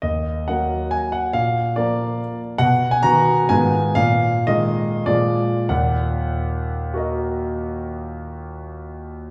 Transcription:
grand piano
0.02 D#2 D#5
0.48 F#3 A#3 A#4 F#5
0.91 G#5
1.12 F#5
1.33 A#2 F5
1.76 F3 A#3 A#4 D5
2.58 B2 F#5
2.91 G#5
3.03 D#3 B3 F#4 A#5
3.49 G#2 D#3 B3 F4 G#5
3.95 A#2 F5
4.47 D#3 G#3 F4 D#5
5.06 A#2 F3 G#3 F4 D5
5.69 D#2 A#2 F#5
6.94 F#4 A#4 D#5

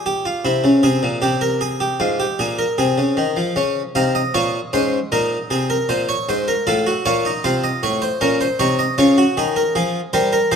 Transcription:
harpsichord
Already playing: A#2
0.06 G4
0.25 F4
0.45 C3 E4
0.64 C#3
0.83 C3 G#4
1.03 A#2
1.22 C3 G4
1.41 A#4
1.61 G#4
1.80 G4
2.00 G#2 F4
2.20 G4
2.39 A#2 G#4
2.59 A#4
2.78 C3 G#4
2.98 C#3
3.17 D#3
3.37 F3
3.56 C#3 C#4
3.95 C3 D#4 F5
4.15 D#5
4.34 A#2 F4 C#5
4.73 G#2 C#4 C5
5.12 A#2 D#4 A#4
5.50 C3 G#4
5.70 A#4
5.89 A#2 C5
6.09 C#5
6.29 G#2 C5
6.48 A#4
6.67 A2 F4 A4
6.87 F#4
7.06 A#2 F4 C#5
7.25 D#4
7.44 C3 F4 C5
7.64 D#5
7.83 A2 C#5
8.02 C5
8.21 A#2 C#4 A#4
8.41 C5
8.59 C3 D#4 C#5
8.79 D#5
8.98 C#3 F4 C#5
9.18 F#4
9.37 D#3 G#4
9.56 A#4
9.75 F3 G#4
10.13 G3 A#4 C5
10.33 A#4
10.52 F3 G#4 C5

